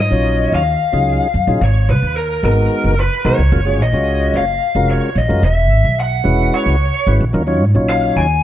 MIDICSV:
0, 0, Header, 1, 4, 480
1, 0, Start_track
1, 0, Key_signature, -6, "minor"
1, 0, Tempo, 545951
1, 1420, Time_signature, 7, 3, 24, 8
1, 7413, End_track
2, 0, Start_track
2, 0, Title_t, "Lead electric guitar"
2, 0, Program_c, 0, 29
2, 0, Note_on_c, 0, 75, 81
2, 480, Note_off_c, 0, 75, 0
2, 483, Note_on_c, 0, 77, 75
2, 1440, Note_on_c, 0, 73, 79
2, 1461, Note_off_c, 0, 77, 0
2, 1670, Note_off_c, 0, 73, 0
2, 1674, Note_on_c, 0, 71, 76
2, 1891, Note_off_c, 0, 71, 0
2, 1907, Note_on_c, 0, 70, 76
2, 2127, Note_off_c, 0, 70, 0
2, 2159, Note_on_c, 0, 70, 73
2, 2635, Note_off_c, 0, 70, 0
2, 2638, Note_on_c, 0, 71, 72
2, 2868, Note_off_c, 0, 71, 0
2, 2871, Note_on_c, 0, 73, 80
2, 3360, Note_off_c, 0, 73, 0
2, 3360, Note_on_c, 0, 75, 91
2, 3838, Note_off_c, 0, 75, 0
2, 3842, Note_on_c, 0, 77, 87
2, 4278, Note_off_c, 0, 77, 0
2, 4317, Note_on_c, 0, 73, 77
2, 4552, Note_on_c, 0, 75, 84
2, 4556, Note_off_c, 0, 73, 0
2, 4769, Note_off_c, 0, 75, 0
2, 4793, Note_on_c, 0, 76, 91
2, 5273, Note_off_c, 0, 76, 0
2, 5276, Note_on_c, 0, 78, 90
2, 5748, Note_on_c, 0, 73, 71
2, 5762, Note_off_c, 0, 78, 0
2, 6249, Note_off_c, 0, 73, 0
2, 6944, Note_on_c, 0, 77, 85
2, 7180, Note_on_c, 0, 80, 88
2, 7189, Note_off_c, 0, 77, 0
2, 7413, Note_off_c, 0, 80, 0
2, 7413, End_track
3, 0, Start_track
3, 0, Title_t, "Tonewheel organ"
3, 0, Program_c, 1, 16
3, 93, Note_on_c, 1, 54, 64
3, 93, Note_on_c, 1, 61, 57
3, 98, Note_on_c, 1, 63, 57
3, 100, Note_on_c, 1, 65, 58
3, 107, Note_on_c, 1, 73, 70
3, 549, Note_off_c, 1, 54, 0
3, 549, Note_off_c, 1, 61, 0
3, 552, Note_off_c, 1, 63, 0
3, 553, Note_off_c, 1, 65, 0
3, 556, Note_off_c, 1, 73, 0
3, 811, Note_on_c, 1, 54, 72
3, 816, Note_on_c, 1, 61, 63
3, 819, Note_on_c, 1, 65, 62
3, 822, Note_on_c, 1, 63, 62
3, 827, Note_on_c, 1, 68, 76
3, 1118, Note_off_c, 1, 54, 0
3, 1120, Note_off_c, 1, 61, 0
3, 1121, Note_off_c, 1, 65, 0
3, 1123, Note_off_c, 1, 63, 0
3, 1125, Note_off_c, 1, 68, 0
3, 1299, Note_on_c, 1, 54, 67
3, 1299, Note_on_c, 1, 61, 63
3, 1299, Note_on_c, 1, 63, 64
3, 1305, Note_on_c, 1, 65, 59
3, 1306, Note_on_c, 1, 68, 72
3, 1419, Note_off_c, 1, 54, 0
3, 1419, Note_off_c, 1, 63, 0
3, 1420, Note_off_c, 1, 61, 0
3, 1422, Note_off_c, 1, 65, 0
3, 1423, Note_off_c, 1, 68, 0
3, 2133, Note_on_c, 1, 56, 72
3, 2139, Note_on_c, 1, 59, 67
3, 2141, Note_on_c, 1, 63, 67
3, 2143, Note_on_c, 1, 66, 66
3, 2146, Note_on_c, 1, 70, 79
3, 2590, Note_off_c, 1, 56, 0
3, 2593, Note_off_c, 1, 59, 0
3, 2594, Note_off_c, 1, 63, 0
3, 2595, Note_off_c, 1, 66, 0
3, 2596, Note_off_c, 1, 70, 0
3, 2854, Note_on_c, 1, 56, 68
3, 2854, Note_on_c, 1, 59, 64
3, 2858, Note_on_c, 1, 66, 61
3, 2861, Note_on_c, 1, 63, 59
3, 2863, Note_on_c, 1, 70, 72
3, 3008, Note_off_c, 1, 56, 0
3, 3008, Note_off_c, 1, 59, 0
3, 3010, Note_off_c, 1, 66, 0
3, 3011, Note_off_c, 1, 63, 0
3, 3013, Note_off_c, 1, 70, 0
3, 3091, Note_on_c, 1, 56, 75
3, 3091, Note_on_c, 1, 61, 67
3, 3096, Note_on_c, 1, 65, 64
3, 3098, Note_on_c, 1, 66, 66
3, 3100, Note_on_c, 1, 70, 76
3, 3171, Note_off_c, 1, 56, 0
3, 3171, Note_off_c, 1, 61, 0
3, 3174, Note_off_c, 1, 65, 0
3, 3174, Note_off_c, 1, 66, 0
3, 3175, Note_off_c, 1, 70, 0
3, 3211, Note_on_c, 1, 56, 70
3, 3214, Note_on_c, 1, 61, 64
3, 3218, Note_on_c, 1, 65, 66
3, 3218, Note_on_c, 1, 66, 64
3, 3222, Note_on_c, 1, 68, 72
3, 3367, Note_off_c, 1, 56, 0
3, 3368, Note_off_c, 1, 61, 0
3, 3370, Note_off_c, 1, 65, 0
3, 3370, Note_off_c, 1, 66, 0
3, 3372, Note_off_c, 1, 68, 0
3, 3454, Note_on_c, 1, 56, 68
3, 3457, Note_on_c, 1, 61, 60
3, 3458, Note_on_c, 1, 65, 61
3, 3466, Note_on_c, 1, 66, 59
3, 3466, Note_on_c, 1, 73, 73
3, 3910, Note_off_c, 1, 56, 0
3, 3911, Note_off_c, 1, 61, 0
3, 3912, Note_off_c, 1, 65, 0
3, 3916, Note_off_c, 1, 66, 0
3, 3916, Note_off_c, 1, 73, 0
3, 4179, Note_on_c, 1, 56, 69
3, 4181, Note_on_c, 1, 61, 61
3, 4183, Note_on_c, 1, 65, 64
3, 4187, Note_on_c, 1, 66, 63
3, 4187, Note_on_c, 1, 70, 76
3, 4482, Note_off_c, 1, 56, 0
3, 4483, Note_off_c, 1, 61, 0
3, 4483, Note_off_c, 1, 65, 0
3, 4485, Note_off_c, 1, 66, 0
3, 4486, Note_off_c, 1, 70, 0
3, 4645, Note_on_c, 1, 56, 68
3, 4645, Note_on_c, 1, 61, 61
3, 4649, Note_on_c, 1, 65, 60
3, 4652, Note_on_c, 1, 66, 65
3, 4655, Note_on_c, 1, 70, 75
3, 4772, Note_off_c, 1, 56, 0
3, 4773, Note_off_c, 1, 61, 0
3, 4774, Note_off_c, 1, 65, 0
3, 4776, Note_off_c, 1, 66, 0
3, 4778, Note_off_c, 1, 70, 0
3, 5485, Note_on_c, 1, 56, 68
3, 5485, Note_on_c, 1, 61, 66
3, 5490, Note_on_c, 1, 66, 65
3, 5491, Note_on_c, 1, 64, 63
3, 5495, Note_on_c, 1, 71, 77
3, 5945, Note_off_c, 1, 61, 0
3, 5946, Note_off_c, 1, 56, 0
3, 5948, Note_off_c, 1, 64, 0
3, 5948, Note_off_c, 1, 66, 0
3, 5951, Note_off_c, 1, 71, 0
3, 6211, Note_on_c, 1, 56, 66
3, 6216, Note_on_c, 1, 61, 65
3, 6221, Note_on_c, 1, 64, 60
3, 6221, Note_on_c, 1, 66, 60
3, 6221, Note_on_c, 1, 71, 74
3, 6367, Note_off_c, 1, 56, 0
3, 6369, Note_off_c, 1, 61, 0
3, 6371, Note_off_c, 1, 71, 0
3, 6372, Note_off_c, 1, 64, 0
3, 6372, Note_off_c, 1, 66, 0
3, 6445, Note_on_c, 1, 61, 78
3, 6446, Note_on_c, 1, 54, 81
3, 6449, Note_on_c, 1, 63, 72
3, 6454, Note_on_c, 1, 65, 76
3, 6454, Note_on_c, 1, 70, 89
3, 6528, Note_off_c, 1, 61, 0
3, 6529, Note_off_c, 1, 54, 0
3, 6530, Note_off_c, 1, 63, 0
3, 6532, Note_off_c, 1, 65, 0
3, 6532, Note_off_c, 1, 70, 0
3, 6566, Note_on_c, 1, 61, 74
3, 6567, Note_on_c, 1, 54, 83
3, 6569, Note_on_c, 1, 63, 75
3, 6572, Note_on_c, 1, 65, 71
3, 6574, Note_on_c, 1, 73, 94
3, 6724, Note_off_c, 1, 54, 0
3, 6724, Note_off_c, 1, 61, 0
3, 6726, Note_off_c, 1, 63, 0
3, 6727, Note_off_c, 1, 65, 0
3, 6728, Note_off_c, 1, 73, 0
3, 6810, Note_on_c, 1, 54, 61
3, 6810, Note_on_c, 1, 61, 58
3, 6817, Note_on_c, 1, 63, 60
3, 6821, Note_on_c, 1, 65, 63
3, 6823, Note_on_c, 1, 73, 72
3, 7268, Note_off_c, 1, 54, 0
3, 7268, Note_off_c, 1, 61, 0
3, 7272, Note_off_c, 1, 63, 0
3, 7273, Note_off_c, 1, 65, 0
3, 7275, Note_off_c, 1, 73, 0
3, 7413, End_track
4, 0, Start_track
4, 0, Title_t, "Upright bass"
4, 0, Program_c, 2, 32
4, 98, Note_on_c, 2, 34, 71
4, 398, Note_off_c, 2, 34, 0
4, 459, Note_on_c, 2, 39, 77
4, 659, Note_off_c, 2, 39, 0
4, 817, Note_on_c, 2, 37, 73
4, 1018, Note_off_c, 2, 37, 0
4, 1178, Note_on_c, 2, 42, 72
4, 1279, Note_off_c, 2, 42, 0
4, 1295, Note_on_c, 2, 34, 73
4, 1397, Note_off_c, 2, 34, 0
4, 1418, Note_on_c, 2, 32, 82
4, 1658, Note_on_c, 2, 37, 72
4, 1672, Note_off_c, 2, 32, 0
4, 1759, Note_off_c, 2, 37, 0
4, 1779, Note_on_c, 2, 39, 74
4, 2079, Note_off_c, 2, 39, 0
4, 2139, Note_on_c, 2, 32, 79
4, 2339, Note_off_c, 2, 32, 0
4, 2499, Note_on_c, 2, 30, 70
4, 2699, Note_off_c, 2, 30, 0
4, 2856, Note_on_c, 2, 35, 69
4, 2957, Note_off_c, 2, 35, 0
4, 2977, Note_on_c, 2, 37, 78
4, 3078, Note_off_c, 2, 37, 0
4, 3093, Note_on_c, 2, 30, 86
4, 3332, Note_off_c, 2, 30, 0
4, 3332, Note_on_c, 2, 34, 71
4, 3435, Note_off_c, 2, 34, 0
4, 3454, Note_on_c, 2, 37, 70
4, 3756, Note_off_c, 2, 37, 0
4, 3813, Note_on_c, 2, 30, 76
4, 4015, Note_off_c, 2, 30, 0
4, 4175, Note_on_c, 2, 29, 70
4, 4377, Note_off_c, 2, 29, 0
4, 4532, Note_on_c, 2, 34, 73
4, 4635, Note_off_c, 2, 34, 0
4, 4658, Note_on_c, 2, 42, 74
4, 4758, Note_off_c, 2, 42, 0
4, 4772, Note_on_c, 2, 28, 82
4, 5011, Note_off_c, 2, 28, 0
4, 5011, Note_on_c, 2, 32, 70
4, 5114, Note_off_c, 2, 32, 0
4, 5136, Note_on_c, 2, 35, 73
4, 5437, Note_off_c, 2, 35, 0
4, 5494, Note_on_c, 2, 28, 79
4, 5696, Note_off_c, 2, 28, 0
4, 5854, Note_on_c, 2, 37, 74
4, 6056, Note_off_c, 2, 37, 0
4, 6212, Note_on_c, 2, 32, 73
4, 6315, Note_off_c, 2, 32, 0
4, 6336, Note_on_c, 2, 34, 77
4, 6437, Note_off_c, 2, 34, 0
4, 6453, Note_on_c, 2, 39, 82
4, 6693, Note_off_c, 2, 39, 0
4, 6693, Note_on_c, 2, 44, 75
4, 6796, Note_off_c, 2, 44, 0
4, 6811, Note_on_c, 2, 34, 71
4, 7114, Note_off_c, 2, 34, 0
4, 7177, Note_on_c, 2, 39, 77
4, 7378, Note_off_c, 2, 39, 0
4, 7413, End_track
0, 0, End_of_file